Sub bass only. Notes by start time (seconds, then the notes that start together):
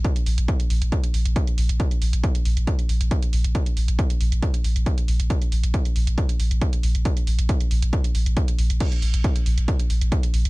0.26 A#1
0.38 A#1
0.70 A#1
0.82 A#1
1.14 A#1
1.25 A#1
1.58 A#1
1.69 A#1
2.02 A#1
2.13 A#1
2.45 A#1
2.57 A#1
2.89 A#1
3.01 A#1
3.33 A#1
3.44 A#1
3.77 A#1
3.88 A#1
4.21 A#1
4.32 A#1
4.64 A#1
4.76 A#1
5.08 A#1
5.20 A#1
5.52 A#1
5.63 A#1
5.96 A#1
6.07 A#1
6.40 A#1
6.51 A#1
6.83 A#1
6.95 A#1
7.27 A#1
7.39 A#1
7.71 A#1
7.82 A#1
8.15 A#1
8.26 A#1
8.59 A#1
8.70 A#1
9.02 A#1
9.14 A#1
9.46 A#1
9.58 A#1
9.90 A#1
10.01 A#1
10.34 A#1
10.45 A#1